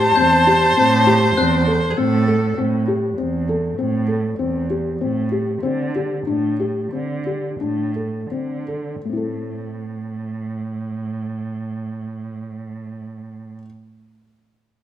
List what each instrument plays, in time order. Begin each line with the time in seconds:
Already playing: felt piano G4, viola C5, flute A5
0.16 cello E2, felt piano C4, glockenspiel G6
0.47 felt piano G4
0.77 cello A2, felt piano C4, frame drum
1.07 felt piano G4, frame drum
1.37 cello E2, felt piano C4, glockenspiel F#6
1.67 felt piano A4, frame drum
1.91 viola G#4
1.97 cello A2, felt piano C4, viola A4
2.27 felt piano A4
2.57 cello A2, felt piano C4
2.88 felt piano G4
3.18 cello E2, felt piano C4
3.49 felt piano A4
3.78 cello A2, felt piano C4
4.08 felt piano A4
4.39 cello E2, felt piano C4
4.70 felt piano G4
5.00 cello A2, felt piano C4
5.32 felt piano G4
5.62 cello D3, felt piano C4
5.95 felt piano G4
6.27 cello A2, felt piano D4
6.60 felt piano G4
6.92 cello D3, felt piano C4
7.26 felt piano G4
7.60 cello A2, felt piano D4
7.96 felt piano A4
8.30 cello D3, felt piano C4
8.68 felt piano A4
9.05 cello A2, felt piano A3
9.09 felt piano C4 E4
9.17 felt piano A4